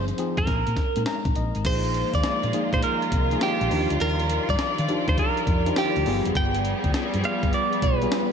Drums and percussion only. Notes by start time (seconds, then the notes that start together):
0.08 closed hi-hat
0.18 closed hi-hat
0.37 kick, closed hi-hat
0.47 kick, snare, closed hi-hat
0.67 closed hi-hat
0.77 kick, snare, closed hi-hat
0.96 closed hi-hat
1.06 snare, closed hi-hat
1.25 kick, closed hi-hat
1.35 closed hi-hat
1.55 closed hi-hat
1.65 kick, closed hi-hat, crash
1.84 closed hi-hat
1.94 closed hi-hat
2.14 kick, closed hi-hat
2.24 snare, closed hi-hat
2.43 closed hi-hat
2.53 closed hi-hat
2.73 kick, closed hi-hat
2.83 closed hi-hat
3.02 closed hi-hat
3.12 kick, closed hi-hat
3.31 closed hi-hat
3.41 snare, closed hi-hat
3.61 closed hi-hat
3.71 open hi-hat
3.90 closed hi-hat
4.00 closed hi-hat
4.19 closed hi-hat
4.30 closed hi-hat
4.49 kick, closed hi-hat
4.59 snare, closed hi-hat
4.79 closed hi-hat
4.89 closed hi-hat
5.08 kick, closed hi-hat
5.18 kick, closed hi-hat
5.37 closed hi-hat
5.47 kick, closed hi-hat
5.66 closed hi-hat
5.76 snare, closed hi-hat
5.96 closed hi-hat
6.06 open hi-hat
6.26 closed hi-hat
6.35 kick, closed hi-hat
6.55 closed hi-hat
6.65 closed hi-hat
6.84 kick, closed hi-hat
6.94 snare, closed hi-hat
7.14 closed hi-hat
7.24 closed hi-hat
7.43 kick, closed hi-hat
7.53 closed hi-hat
7.73 closed hi-hat
7.82 kick, closed hi-hat
8.02 closed hi-hat
8.12 snare, closed hi-hat